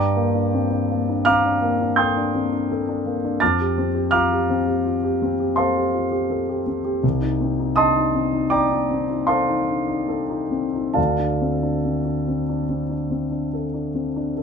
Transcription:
0.00 3.37 G2 soft
0.00 0.26 D4 soft
0.00 1.22 D5 medium
0.00 1.22 G5 medium
0.00 1.22 A#5 medium
0.00 1.25 D6 medium
0.16 0.45 A#3 soft
0.35 0.64 D4 soft
0.54 0.71 C4 soft
0.70 1.00 D4 soft
0.91 1.20 A#3 soft
1.09 1.38 D4 soft
1.25 1.45 C4 soft
1.25 1.94 F5 medium
1.25 1.94 A#5 medium
1.25 1.94 D6 medium
1.25 1.97 F6 medium
1.45 1.73 D4 soft
1.62 1.90 A#3 soft
1.81 2.09 D4 soft
1.96 2.27 A4 soft
1.96 3.37 G5 soft
1.96 3.36 C6 soft
1.96 3.36 D#6 soft
1.96 3.40 G6 medium
2.17 2.45 D4 soft
2.35 2.52 C4 soft
2.53 2.80 D4 soft
2.71 2.99 A4 soft
2.89 3.16 D4 soft
3.06 3.34 A#3 soft
3.24 3.41 D4 soft
3.40 7.00 F2 soft
3.40 4.08 A5 medium
3.40 4.08 D6 medium
3.40 4.08 F6 medium
3.40 4.12 A6 medium
3.60 3.88 G4 soft
3.78 4.05 C4 soft
3.95 4.23 G4 soft
4.11 4.30 F4 soft
4.11 5.53 F5 medium
4.11 5.53 A#5 medium
4.11 5.53 D6 medium
4.11 5.56 F6 medium
4.32 4.59 G4 soft
4.50 4.77 C4 soft
4.67 4.95 G4 soft
4.85 5.03 F4 soft
5.03 5.32 G4 soft
5.22 5.51 C4 soft
5.40 5.68 G4 soft
5.56 5.86 A4 soft
5.56 6.62 C5 soft
5.56 6.62 F5 soft
5.56 6.62 A5 soft
5.56 6.66 C6 medium
5.76 6.04 G4 soft
5.94 6.11 F4 soft
6.12 6.41 G4 soft
6.30 6.59 A4 soft
6.49 6.78 G4 soft
6.66 6.96 C4 soft
6.84 7.03 G4 soft
7.03 10.93 C2 soft
7.21 7.51 D#4 soft
7.41 7.70 C4 soft
7.59 7.89 D#4 soft
7.76 7.96 D4 soft
7.76 8.48 D#5 medium
7.76 8.48 A5 medium
7.76 8.48 C6 medium
7.76 8.51 D#6 medium
7.96 8.26 D#4 soft
8.15 8.45 C4 soft
8.33 8.63 D#4 soft
8.50 8.71 D4 soft
8.50 9.25 D5 medium
8.50 9.24 G5 soft
8.50 9.25 A#5 medium
8.50 9.28 D6 medium
8.71 9.02 D#4 soft
8.91 9.21 C4 soft
9.10 9.41 D#4 soft
9.27 9.60 A4 soft
9.27 10.92 C5 soft
9.27 10.92 F5 soft
9.27 10.92 A5 soft
9.27 10.96 C6 medium
9.49 9.80 D#4 soft
9.68 9.88 D4 soft
9.88 10.21 D#4 soft
10.08 10.43 A4 soft
10.29 10.65 D#4 soft
10.51 10.87 C4 soft
10.74 10.97 D#4 soft
10.93 14.43 D2 soft
10.93 13.52 A4 soft
10.93 14.34 D5 soft
10.93 14.33 F5 soft
10.93 14.37 A5 soft
11.19 11.55 D4 soft
11.41 11.77 C4 soft
11.63 11.98 D4 soft
11.85 12.07 C4 soft
12.05 12.40 D4 soft
12.28 12.62 C4 soft
12.49 12.83 D4 soft
12.69 12.91 C4 soft
12.90 13.24 D4 soft
13.11 13.45 C4 soft
13.31 13.66 D4 soft
13.53 13.87 A4 soft
13.74 14.08 D4 soft
13.95 14.17 C4 soft
14.16 14.43 D4 soft
14.37 14.43 A4 soft

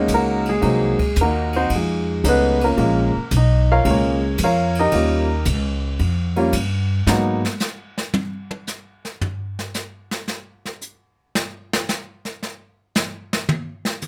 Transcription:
0.00 0.48 G#3 medium
0.00 0.13 A#3 medium
0.00 0.60 C#4 medium
0.00 0.13 D#4 medium
0.08 0.61 C#2 medium
0.08 kick soft
0.08 hi-hat pedal medium
0.08 ride medium
0.14 0.48 A#3 medium
0.14 0.48 D#4 medium
0.14 0.48 F#4 medium
0.14 0.48 A#4 medium
0.45 1.14 G#4 medium
0.45 ride soft
0.50 1.14 G#3 medium
0.61 0.97 C2 medium
0.61 0.96 F#3 medium
0.61 0.95 A#3 medium
0.61 0.96 C4 medium
0.61 0.96 D#4 medium
0.61 kick soft
0.61 ride medium
0.99 muted upright bass stroke soft
0.99 kick medium
0.99 ride medium
1.16 1.69 D#2 loud
1.16 hi-hat pedal medium
1.16 ride medium
1.21 1.55 A#3 medium
1.21 1.55 D#4 medium
1.21 1.55 F#4 medium
1.21 1.55 A#4 medium
1.53 1.71 C4 medium
1.53 1.71 D#4 medium
1.53 1.71 F#4 medium
1.53 1.71 C5 loud
1.53 ride soft
1.70 2.22 F2 medium
1.70 kick soft
1.70 ride medium
1.76 2.22 G#3 soft
1.76 2.23 D#4 soft
1.76 2.23 F4 soft
1.76 2.23 G#4 medium
2.24 2.76 C#2 medium
2.24 2.57 G#3 medium
2.24 2.57 A3 medium
2.24 2.58 C#4 medium
2.24 2.58 D#4 medium
2.24 kick soft
2.24 hi-hat pedal medium
2.24 ride medium
2.28 2.62 B3 medium
2.28 2.62 B4 medium
2.61 2.76 A#3 medium
2.61 2.77 C#4 medium
2.61 2.77 F4 medium
2.61 3.29 A#4 medium
2.61 ride soft
2.77 3.12 A#1 medium
2.77 3.11 G#3 medium
2.77 3.11 A#3 medium
2.77 3.11 C#4 medium
2.77 3.12 F4 medium
2.77 kick soft
2.77 ride medium
3.16 muted upright bass stroke soft
3.31 3.83 B1 loud
3.31 kick soft
3.31 hi-hat pedal medium
3.31 ride medium
3.37 3.70 D#4 medium
3.37 3.70 D#5 medium
3.72 3.85 F4 medium
3.72 3.86 A#4 medium
3.72 3.86 C#5 medium
3.72 3.86 F5 loud
3.85 4.37 C#2 medium
3.85 4.18 G#3 medium
3.85 4.19 A#3 medium
3.85 3.89 C#4 medium
3.85 4.19 F4 medium
3.85 kick soft
3.85 ride medium
3.91 4.38 C#4 medium
3.91 4.38 G#4 medium
3.91 4.38 A#4 soft
3.91 4.38 C#5 medium
4.38 4.91 F2 medium
4.38 kick soft
4.38 hi-hat pedal medium
4.38 ride medium
4.44 4.77 F4 medium
4.44 4.77 A#4 medium
4.44 4.77 C#5 medium
4.44 4.77 F5 medium
4.75 ride soft
4.79 5.44 D#4 medium
4.79 5.44 G4 medium
4.79 5.44 A#4 medium
4.79 5.44 D#5 loud
4.92 5.44 D#2 medium
4.92 5.26 G3 medium
4.92 5.26 A#3 medium
4.92 5.26 C#4 medium
4.92 5.26 F4 medium
4.92 kick soft
4.92 ride medium
5.45 5.98 C#2 loud
5.45 kick soft
5.45 hi-hat pedal medium
5.45 ride medium
5.99 6.52 F2 medium
5.99 kick soft
5.99 ride medium
6.36 6.51 G3 medium
6.36 6.51 A#3 medium
6.36 6.52 C#4 medium
6.36 6.52 F4 medium
6.36 ride soft
6.53 7.05 G2 medium
6.53 kick soft
6.53 hi-hat pedal medium
6.53 ride medium
7.06 7.43 G#2 medium
7.06 7.40 F#3 medium
7.06 7.40 A#3 medium
7.06 7.41 B3 medium
7.06 7.41 D#4 medium
7.06 snare loud
7.45 snare soft
7.60 snare medium
7.60 hi-hat pedal medium
7.98 snare medium
8.14 high tom loud
8.51 high tom soft
8.67 snare soft
8.67 hi-hat pedal medium
9.05 snare soft
9.21 floor tom loud
9.59 snare soft
9.74 snare soft
9.74 hi-hat pedal medium
10.11 snare medium
10.28 snare soft
10.65 snare soft
10.81 hi-hat pedal medium
11.35 snare loud
11.73 snare loud
11.89 snare medium
11.89 hi-hat pedal medium
12.25 snare soft
12.43 snare soft
12.95 snare loud
12.95 hi-hat pedal medium
13.33 snare loud
13.49 mid tom loud
13.85 snare medium
14.02 hi-hat pedal medium
14.02 mid tom soft

